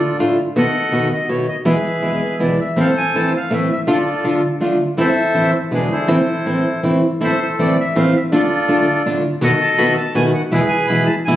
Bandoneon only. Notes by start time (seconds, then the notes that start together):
Already playing: F4 A4 D5
0.57 A4 D#5 F#5
1.12 D#5
1.30 C#5
1.48 D#5
1.67 G#4 B4 E5
2.42 D5
2.60 E5
2.80 A4 C5 F5
2.98 G#5
3.16 A5
3.37 F5
3.54 E5
3.73 E5
3.90 F4 A4 D5
5.00 A4 C5 E5
5.73 D4 G#4 B4
5.92 E4 A4 C5
7.23 A4 C5 E5
7.41 C5
7.60 D5
7.80 E5
7.98 F5
8.16 E5
8.34 F4 A4 D5
9.42 A4 D#5 F#5
9.61 A5
9.78 B5
9.97 A5
10.15 G#5
10.34 F#5
10.52 G#4 B4 E5
10.68 G#5
10.87 B5
11.06 A5
11.25 G#5